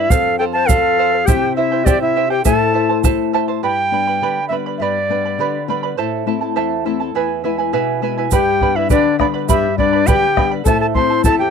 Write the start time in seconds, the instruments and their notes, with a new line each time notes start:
Already playing: quena E4 E5, charango B4 D5 B5
0.10 nylon-string guitar F2, quena A4 F5, charango A4 C5 F5, bombo low, shaker
0.39 quena A4 G5, charango A4 C5 F5
0.52 quena C5 A5, charango C5 F5
0.68 quena A4 F5, charango A4 C5 F5, bombo low, shaker
0.99 charango A4 C5 F5
1.13 charango C5 F5
1.25 nylon-string guitar C3, charango E4 G4 C5 E5 G5, quena G4 G5, bombo low, shaker
1.56 quena E4 E5, charango E4 C5 E5 G5
1.72 charango E4 C5 G5
1.84 charango E4 G4 C5 E5 G5, quena G4 D5, bombo low, shaker
2.00 quena E4 E5
2.16 charango E4 C5 E5 G5
2.29 charango E4 C5 G5, quena G4 G5
2.44 nylon-string guitar A2, charango E4 A4 C5 E5 A5, quena A4 A5, bombo low, shaker
2.74 charango E4 C5 E5 A5
2.89 charango E4 C5 A5
3.04 charango E4 A4 C5 E5 A5, bombo low, shaker
3.33 charango E4 C5 E5 A5
3.48 charango E4 C5 A5
3.63 nylon-string guitar G2, charango G4 B4 D5 G5 B5, quena G5
3.91 nylon-string guitar G3 B3 D4, charango B4 D5 G5 B5
4.07 charango B4 D5 B5
4.21 nylon-string guitar D3, charango G4 B4 D5 G5 B5
4.49 nylon-string guitar G3 B3 D4, charango B4 D5 G5, quena E5
4.53 charango B5
4.66 charango B4 D5 B5
4.78 nylon-string guitar G2, charango G4 D5 G5, quena E5
4.82 charango B4 B5, quena D5
5.09 nylon-string guitar G3 B3 D4, charango B4 D5 G5 B5
5.25 charango B4 D5 B5
5.39 nylon-string guitar D3, charango G4 B4 D5 G5 B5
5.68 nylon-string guitar G3 B3 D4, charango B4 D5 G5 B5
5.83 charango B4 D5 B5
5.97 nylon-string guitar A2, charango E4 A4 C5 E5 A5
6.26 nylon-string guitar A3 C4 E4, charango E4 A4 E5 A5
6.41 charango E4 A4 A5
6.56 nylon-string guitar E2, charango E4 A4 C5 E5 A5
6.85 nylon-string guitar A3 C4 E4, charango E4 A4 E5 A5
7.00 charango E4 A4 A5
7.15 nylon-string guitar E2, charango E4 G#4 B4 E5 G#5
7.44 nylon-string guitar G#3 B3 E4, charango E4 B4 E5 G#5
7.58 charango E4 B4 G#5
7.73 nylon-string guitar B2, charango E4 G#4 B4 E5 G#5
8.02 nylon-string guitar G#3 B3 E4, charango E4 B4 E5 G#5
8.18 charango E4 B4 G#5
8.31 nylon-string guitar G2, charango G4 B4 D5 G5 B5, quena G4 G5, bombo low, shaker
8.61 nylon-string guitar G3 B3 D4, charango B4 D5 G5 B5, bombo low
8.76 quena E4 E5, charango B4 D5 B5
8.90 nylon-string guitar D3, quena D4 D5, charango G4 B4 D5 G5 B5, bombo low, shaker
9.19 nylon-string guitar G3 B3 D4, quena D4 D5, charango B4 D5 G5 B5, bombo rim, bombo low
9.34 charango B4 D5 B5
9.48 nylon-string guitar G2, quena G4 E5, charango G4 B4 D5 G5 B5, bombo low, shaker
9.78 nylon-string guitar G3 B3 D4, quena D4 D5, charango B4 D5 G5 B5, bombo low
9.93 charango B4 D5 B5
10.07 nylon-string guitar D3, quena G4 G5, charango G4 B4 D5 G5 B5, bombo low, shaker
10.36 nylon-string guitar G3 B3 D4, charango B4 D5 G5 B5, bombo rim, bombo low
10.51 charango B4 D5 B5
10.64 nylon-string guitar A2, charango E4 A4 C5 E5 A5, quena A4 A5, bombo low, shaker
10.80 quena A4 A5
10.94 nylon-string guitar A3 C4 E4, charango E4 A4 E5 A5, quena C5 C6, bombo low
11.10 charango E4 A4 A5
11.24 nylon-string guitar E2, charango E4 A4 C5 E5 A5, quena A4 A5, bombo low, shaker
11.39 quena G4 G5